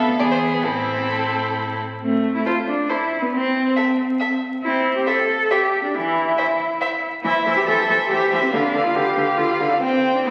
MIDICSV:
0, 0, Header, 1, 5, 480
1, 0, Start_track
1, 0, Tempo, 451807
1, 697, Time_signature, 3, 2, 24, 8
1, 2616, Tempo, 436364
1, 6456, Tempo, 430108
1, 11311, End_track
2, 0, Start_track
2, 0, Title_t, "Violin"
2, 0, Program_c, 0, 40
2, 0, Note_on_c, 0, 69, 56
2, 208, Note_on_c, 0, 68, 60
2, 224, Note_off_c, 0, 69, 0
2, 691, Note_on_c, 0, 64, 47
2, 707, Note_off_c, 0, 68, 0
2, 1927, Note_off_c, 0, 64, 0
2, 2617, Note_on_c, 0, 72, 41
2, 2705, Note_off_c, 0, 72, 0
2, 3092, Note_on_c, 0, 72, 48
2, 3180, Note_off_c, 0, 72, 0
2, 4045, Note_on_c, 0, 76, 44
2, 4133, Note_off_c, 0, 76, 0
2, 4523, Note_on_c, 0, 76, 50
2, 4611, Note_off_c, 0, 76, 0
2, 5489, Note_on_c, 0, 76, 48
2, 5577, Note_off_c, 0, 76, 0
2, 5968, Note_on_c, 0, 76, 52
2, 6056, Note_off_c, 0, 76, 0
2, 6929, Note_on_c, 0, 76, 49
2, 7018, Note_off_c, 0, 76, 0
2, 7411, Note_on_c, 0, 76, 58
2, 7500, Note_off_c, 0, 76, 0
2, 7897, Note_on_c, 0, 76, 50
2, 8130, Note_off_c, 0, 76, 0
2, 8137, Note_on_c, 0, 76, 47
2, 8374, Note_off_c, 0, 76, 0
2, 8387, Note_on_c, 0, 76, 54
2, 8619, Note_off_c, 0, 76, 0
2, 8628, Note_on_c, 0, 76, 51
2, 8858, Note_off_c, 0, 76, 0
2, 8869, Note_on_c, 0, 76, 55
2, 9088, Note_off_c, 0, 76, 0
2, 9095, Note_on_c, 0, 76, 49
2, 9321, Note_off_c, 0, 76, 0
2, 9328, Note_on_c, 0, 77, 47
2, 9560, Note_off_c, 0, 77, 0
2, 9566, Note_on_c, 0, 77, 42
2, 9803, Note_off_c, 0, 77, 0
2, 9819, Note_on_c, 0, 77, 51
2, 10050, Note_off_c, 0, 77, 0
2, 10060, Note_on_c, 0, 77, 41
2, 10290, Note_off_c, 0, 77, 0
2, 10301, Note_on_c, 0, 77, 48
2, 10530, Note_off_c, 0, 77, 0
2, 10541, Note_on_c, 0, 77, 41
2, 10771, Note_off_c, 0, 77, 0
2, 10778, Note_on_c, 0, 79, 39
2, 11225, Note_off_c, 0, 79, 0
2, 11264, Note_on_c, 0, 79, 43
2, 11311, Note_off_c, 0, 79, 0
2, 11311, End_track
3, 0, Start_track
3, 0, Title_t, "Violin"
3, 0, Program_c, 1, 40
3, 205, Note_on_c, 1, 74, 74
3, 255, Note_off_c, 1, 74, 0
3, 329, Note_on_c, 1, 72, 57
3, 414, Note_off_c, 1, 72, 0
3, 561, Note_on_c, 1, 71, 55
3, 684, Note_on_c, 1, 69, 58
3, 700, Note_off_c, 1, 71, 0
3, 1902, Note_off_c, 1, 69, 0
3, 2611, Note_on_c, 1, 69, 45
3, 2699, Note_off_c, 1, 69, 0
3, 3092, Note_on_c, 1, 69, 46
3, 3180, Note_off_c, 1, 69, 0
3, 4055, Note_on_c, 1, 69, 49
3, 4143, Note_off_c, 1, 69, 0
3, 4529, Note_on_c, 1, 69, 43
3, 4617, Note_off_c, 1, 69, 0
3, 5481, Note_on_c, 1, 72, 51
3, 5569, Note_off_c, 1, 72, 0
3, 5961, Note_on_c, 1, 72, 50
3, 6049, Note_off_c, 1, 72, 0
3, 6934, Note_on_c, 1, 72, 54
3, 7023, Note_off_c, 1, 72, 0
3, 7412, Note_on_c, 1, 72, 46
3, 7501, Note_off_c, 1, 72, 0
3, 7899, Note_on_c, 1, 72, 47
3, 8119, Note_off_c, 1, 72, 0
3, 8126, Note_on_c, 1, 72, 55
3, 8368, Note_off_c, 1, 72, 0
3, 8375, Note_on_c, 1, 72, 56
3, 8609, Note_off_c, 1, 72, 0
3, 8616, Note_on_c, 1, 72, 41
3, 8847, Note_off_c, 1, 72, 0
3, 8854, Note_on_c, 1, 72, 51
3, 9086, Note_off_c, 1, 72, 0
3, 9093, Note_on_c, 1, 72, 44
3, 9321, Note_off_c, 1, 72, 0
3, 9328, Note_on_c, 1, 71, 47
3, 9563, Note_off_c, 1, 71, 0
3, 9576, Note_on_c, 1, 71, 47
3, 9800, Note_off_c, 1, 71, 0
3, 9807, Note_on_c, 1, 71, 51
3, 10041, Note_off_c, 1, 71, 0
3, 10048, Note_on_c, 1, 71, 39
3, 10283, Note_off_c, 1, 71, 0
3, 10291, Note_on_c, 1, 71, 49
3, 10517, Note_off_c, 1, 71, 0
3, 10524, Note_on_c, 1, 71, 41
3, 10750, Note_off_c, 1, 71, 0
3, 10757, Note_on_c, 1, 72, 45
3, 11214, Note_off_c, 1, 72, 0
3, 11245, Note_on_c, 1, 72, 47
3, 11311, Note_off_c, 1, 72, 0
3, 11311, End_track
4, 0, Start_track
4, 0, Title_t, "Cello"
4, 0, Program_c, 2, 42
4, 0, Note_on_c, 2, 38, 59
4, 210, Note_on_c, 2, 40, 56
4, 225, Note_off_c, 2, 38, 0
4, 685, Note_off_c, 2, 40, 0
4, 692, Note_on_c, 2, 45, 53
4, 1902, Note_off_c, 2, 45, 0
4, 2141, Note_on_c, 2, 60, 62
4, 2470, Note_off_c, 2, 60, 0
4, 2496, Note_on_c, 2, 64, 57
4, 2604, Note_off_c, 2, 64, 0
4, 2610, Note_on_c, 2, 65, 75
4, 2698, Note_off_c, 2, 65, 0
4, 2850, Note_on_c, 2, 62, 65
4, 3088, Note_on_c, 2, 64, 67
4, 3104, Note_off_c, 2, 62, 0
4, 3449, Note_on_c, 2, 59, 58
4, 3465, Note_off_c, 2, 64, 0
4, 3567, Note_on_c, 2, 60, 61
4, 3584, Note_off_c, 2, 59, 0
4, 4767, Note_off_c, 2, 60, 0
4, 5000, Note_on_c, 2, 64, 74
4, 5342, Note_off_c, 2, 64, 0
4, 5366, Note_on_c, 2, 67, 65
4, 5484, Note_on_c, 2, 69, 79
4, 5500, Note_off_c, 2, 67, 0
4, 5967, Note_on_c, 2, 67, 76
4, 5983, Note_off_c, 2, 69, 0
4, 6324, Note_off_c, 2, 67, 0
4, 6330, Note_on_c, 2, 62, 58
4, 6447, Note_on_c, 2, 64, 65
4, 6464, Note_off_c, 2, 62, 0
4, 7654, Note_off_c, 2, 64, 0
4, 7889, Note_on_c, 2, 64, 76
4, 8229, Note_off_c, 2, 64, 0
4, 8253, Note_on_c, 2, 67, 67
4, 8302, Note_off_c, 2, 67, 0
4, 8370, Note_on_c, 2, 69, 75
4, 8844, Note_off_c, 2, 69, 0
4, 8852, Note_on_c, 2, 67, 75
4, 9209, Note_on_c, 2, 60, 55
4, 9226, Note_off_c, 2, 67, 0
4, 9316, Note_off_c, 2, 60, 0
4, 9323, Note_on_c, 2, 62, 74
4, 9681, Note_on_c, 2, 65, 63
4, 9697, Note_off_c, 2, 62, 0
4, 9801, Note_on_c, 2, 67, 71
4, 9818, Note_off_c, 2, 65, 0
4, 10279, Note_on_c, 2, 65, 64
4, 10296, Note_off_c, 2, 67, 0
4, 10647, Note_on_c, 2, 62, 52
4, 10664, Note_off_c, 2, 65, 0
4, 10759, Note_off_c, 2, 62, 0
4, 10765, Note_on_c, 2, 60, 66
4, 11137, Note_on_c, 2, 62, 51
4, 11154, Note_off_c, 2, 60, 0
4, 11248, Note_off_c, 2, 62, 0
4, 11255, Note_on_c, 2, 64, 63
4, 11311, Note_off_c, 2, 64, 0
4, 11311, End_track
5, 0, Start_track
5, 0, Title_t, "Viola"
5, 0, Program_c, 3, 41
5, 0, Note_on_c, 3, 59, 63
5, 202, Note_off_c, 3, 59, 0
5, 208, Note_on_c, 3, 59, 54
5, 688, Note_on_c, 3, 60, 51
5, 704, Note_off_c, 3, 59, 0
5, 1925, Note_off_c, 3, 60, 0
5, 2152, Note_on_c, 3, 57, 59
5, 2539, Note_off_c, 3, 57, 0
5, 3586, Note_on_c, 3, 60, 61
5, 3980, Note_off_c, 3, 60, 0
5, 5014, Note_on_c, 3, 60, 64
5, 5414, Note_off_c, 3, 60, 0
5, 6461, Note_on_c, 3, 52, 61
5, 6860, Note_off_c, 3, 52, 0
5, 7898, Note_on_c, 3, 52, 59
5, 7987, Note_off_c, 3, 52, 0
5, 8141, Note_on_c, 3, 52, 51
5, 8231, Note_off_c, 3, 52, 0
5, 8380, Note_on_c, 3, 52, 53
5, 8470, Note_off_c, 3, 52, 0
5, 8624, Note_on_c, 3, 52, 52
5, 8713, Note_off_c, 3, 52, 0
5, 8871, Note_on_c, 3, 52, 50
5, 8960, Note_off_c, 3, 52, 0
5, 9107, Note_on_c, 3, 52, 59
5, 9196, Note_off_c, 3, 52, 0
5, 9333, Note_on_c, 3, 50, 63
5, 9422, Note_off_c, 3, 50, 0
5, 9574, Note_on_c, 3, 50, 51
5, 9663, Note_off_c, 3, 50, 0
5, 9804, Note_on_c, 3, 50, 60
5, 9894, Note_off_c, 3, 50, 0
5, 10045, Note_on_c, 3, 50, 50
5, 10135, Note_off_c, 3, 50, 0
5, 10286, Note_on_c, 3, 50, 51
5, 10375, Note_off_c, 3, 50, 0
5, 10525, Note_on_c, 3, 50, 55
5, 10614, Note_off_c, 3, 50, 0
5, 10770, Note_on_c, 3, 60, 57
5, 11265, Note_on_c, 3, 59, 47
5, 11282, Note_off_c, 3, 60, 0
5, 11311, Note_off_c, 3, 59, 0
5, 11311, End_track
0, 0, End_of_file